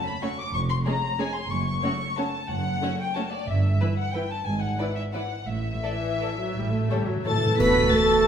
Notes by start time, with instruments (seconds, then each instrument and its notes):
0.05 violin section B5
0.22 viola section A3 C#4, violin section F#4 C#5 C#6
0.38 violin section D6
0.53 double bass section F1, cello section F2, violin section C#6
0.70 violin section C6
0.86 viola section G#3 C#4, violin section G#4 C#5 A#5
1.19 viola section G#3 C#4, violin section G#4 C#5 G#5
1.36 violin section C6
1.51 double bass section F#1, cello section F#2, violin section C#6
1.67 violin section C#6
1.83 viola section A3 C#4, violin section F#4 C#5
2.17 viola section A3 C#4, violin section F#4 C#5 A5
2.49 double bass section F#1, cello section F#2, violin section F#5
2.82 viola section A3 C#4, violin section F#4 C#5
3.00 violin section G5
3.15 viola section A3 C#4, violin section F#4 C#5 A5
3.33 violin section D5
3.48 double bass section G1, cello section G2, violin section E5
3.81 viola section E3 E4, violin section B4
3.98 violin section F#5
4.13 viola section E3 E4, violin section B4 G5
4.31 violin section A5
4.45 double bass section G#1, cello section G#2, violin section G#5
4.61 violin section F#5
4.79 viola section E3 E4, violin section B4 D5
4.96 violin section E5
5.13 viola section E3 E4, violin section B4 D5 F#5
5.47 double bass section A1, cello section A2, violin section E5
5.83 viola section E3, violin section A4 D5
6.21 violin section A4 D5
6.39 viola section F#3
6.56 double bass section A1, cello section A2, timpani A2, viola section G3
6.73 viola section A3
6.79 timpani A2
6.85 timpani A2
6.90 timpani A2, viola section G3, violin section A4 C#5
7.01 timpani A2
7.08 timpani A2, viola section F#3
7.16 timpani A2
7.25 timpani A2, viola section E3 A4, cello section A3, violin section A4 C#5 A5 A6, french horn section A4
7.32 timpani A2
7.39 timpani A2
7.46 timpani A2
7.59 double bass section D2, bassoon A3, cello section B3, clarinet F#4, oboe A4, viola section B4, french horn section B4, flute A5, violin section B5 B6, concert bass drum, crash
7.92 cello section A3, viola section A4, french horn section A4, violin section A5 A6